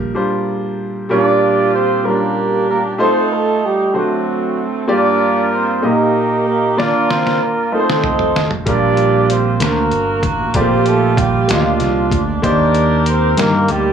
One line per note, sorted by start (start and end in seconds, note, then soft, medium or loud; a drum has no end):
0.00 0.12 A#1 medium
0.00 0.12 A#2 medium
0.00 0.14 G3 medium
0.00 0.15 D4 medium
0.00 0.16 F4 medium
0.00 1.11 A#4 medium
0.14 0.82 G3 medium
0.14 0.82 D4 medium
0.14 0.83 F4 medium
0.14 0.83 C5 medium
1.09 2.01 A#2 medium
1.09 1.77 G3 medium
1.09 1.17 C#4 soft
1.09 1.70 D4 medium
1.09 1.77 F4 medium
1.09 2.02 F4 medium
1.09 2.02 G4 medium
1.09 1.78 A#4 medium
1.09 1.70 D5 loud
1.16 1.80 D4 medium
1.74 2.06 C4 medium
1.74 2.06 C5 medium
2.04 2.72 G3 medium
2.04 2.68 A#3 medium
2.04 2.11 C#4 soft
2.04 2.97 D4 medium
2.04 2.72 F4 medium
2.04 2.97 G4 medium
2.04 2.72 A#4 medium
2.04 2.68 A#4 medium
2.11 2.75 D4 medium
2.69 2.83 A#3 medium
2.69 2.83 A#4 medium
2.98 3.66 A3 medium
2.98 3.30 C4 medium
2.98 3.66 D#4 medium
2.98 3.91 D#4 medium
2.98 3.66 F4 medium
2.98 3.31 A4 medium
2.98 3.67 C5 medium
2.98 3.30 C5 loud
3.33 3.64 A3 medium
3.33 3.64 A4 medium
3.64 3.95 G3 medium
3.64 3.95 G4 medium
3.93 4.85 D3 medium
3.93 4.66 F#3 medium
3.93 4.61 A3 medium
3.93 4.86 A3 medium
3.93 4.86 C4 medium
3.93 4.61 D4 medium
3.93 4.61 F#4 medium
3.93 4.66 F#4 medium
3.93 4.61 C5 medium
4.88 5.79 G2 medium
4.88 5.55 A#3 medium
4.88 5.49 D4 medium
4.88 5.55 F4 medium
4.88 5.56 G4 medium
4.88 5.56 D5 medium
4.88 5.49 D5 loud
4.92 5.81 F4 medium
4.92 5.81 A#4 medium
5.54 5.85 C4 medium
5.54 5.85 C5 medium
5.82 6.73 A#2 medium
5.82 6.50 A#3 medium
5.82 6.46 A#3 medium
5.82 6.50 D#4 medium
5.82 6.50 G4 medium
5.82 6.46 A#4 medium
5.82 6.50 D#5 medium
5.86 6.75 D#4 medium
5.86 6.75 G4 medium
6.47 6.76 A#3 medium
6.47 6.76 A#4 medium
6.77 7.44 A#3 medium
6.77 7.45 D4 medium
6.77 7.10 D4 medium
6.77 7.45 F4 medium
6.77 7.69 F4 medium
6.77 7.41 A#4 medium
6.77 7.45 D5 medium
6.77 7.10 D5 loud
6.77 snare medium
7.10 7.41 C4 medium
7.10 7.41 C5 medium
7.10 snare medium
7.27 snare medium
7.42 7.73 A#3 medium
7.42 7.73 A#4 medium
7.72 8.39 A3 medium
7.72 8.43 C4 medium
7.72 8.39 D#4 medium
7.72 8.50 D#4 medium
7.72 8.39 F4 medium
7.72 8.50 A4 medium
7.72 7.79 A#4 medium
7.72 8.43 C5 medium
7.80 8.43 C5 medium
7.90 snare medium
8.04 mid tom medium
8.19 floor tom medium
8.36 snare medium
8.51 floor tom medium
8.65 9.57 A#1 medium
8.65 9.57 A#2 medium
8.65 9.33 G3 medium
8.65 9.33 D4 medium
8.65 9.26 D4 loud
8.65 9.33 F4 medium
8.65 9.57 F4 medium
8.65 9.57 G4 medium
8.65 9.33 A#4 medium
8.65 9.26 D5 loud
8.65 kick loud
8.65 closed hi-hat medium
8.97 closed hi-hat soft
9.30 9.61 C4 medium
9.30 9.61 C5 medium
9.30 closed hi-hat medium
9.60 9.89 D2 loud
9.60 10.51 D3 medium
9.60 10.27 A#3 medium
9.60 10.23 A#3 medium
9.60 10.27 D4 medium
9.60 10.27 F#4 medium
9.60 10.51 F#4 medium
9.60 10.23 A#4 medium
9.60 10.28 C5 medium
9.60 snare loud
9.60 closed hi-hat medium
9.91 10.21 G1 medium
9.91 closed hi-hat soft
10.23 10.52 A1 medium
10.23 10.53 A#3 medium
10.23 10.53 A#4 medium
10.23 kick medium
10.23 closed hi-hat medium
10.54 11.45 A#1 medium
10.54 11.45 A#2 medium
10.54 10.61 A3 medium
10.54 10.87 C4 medium
10.54 11.22 F4 medium
10.54 11.46 F4 medium
10.54 11.22 G4 medium
10.54 11.18 G4 medium
10.54 10.87 C5 loud
10.54 11.22 D5 medium
10.54 kick loud
10.54 closed hi-hat medium
10.61 11.25 A#3 medium
10.86 11.16 A3 medium
10.86 11.16 A4 medium
10.86 closed hi-hat soft
11.17 11.50 G3 medium
11.17 11.50 G4 medium
11.17 kick loud
11.17 closed hi-hat medium
11.48 11.78 D2 medium
11.48 12.20 F3 medium
11.48 12.15 A#3 medium
11.48 12.40 D4 medium
11.48 12.15 F4 medium
11.48 12.20 F4 medium
11.48 12.16 G4 medium
11.48 11.56 D#5 medium
11.48 snare loud
11.48 closed hi-hat medium
11.56 12.19 F5 medium
11.80 12.10 C2 medium
11.80 snare soft
11.80 closed hi-hat soft
12.12 12.41 D2 medium
12.12 kick medium
12.12 closed hi-hat medium
12.42 13.34 D#2 medium
12.42 13.34 D#3 medium
12.42 13.10 A#3 medium
12.42 13.03 D4 medium
12.42 13.10 D#4 medium
12.42 13.10 G4 medium
12.42 13.34 G4 medium
12.42 13.34 A#4 medium
12.42 13.10 C5 medium
12.42 13.03 D5 loud
12.42 kick loud
12.42 closed hi-hat medium
12.75 closed hi-hat soft
13.06 13.37 C4 medium
13.06 13.37 C5 medium
13.06 closed hi-hat medium
13.37 13.66 G2 medium
13.37 13.93 A#3 medium
13.37 13.70 A#3 medium
13.37 13.93 D#4 medium
13.37 13.93 G4 medium
13.37 13.93 A#4 medium
13.37 13.70 A#4 medium
13.37 snare loud
13.37 closed hi-hat medium
13.68 13.93 D2 medium
13.68 13.93 G3 medium
13.68 13.93 G4 medium
13.68 closed hi-hat soft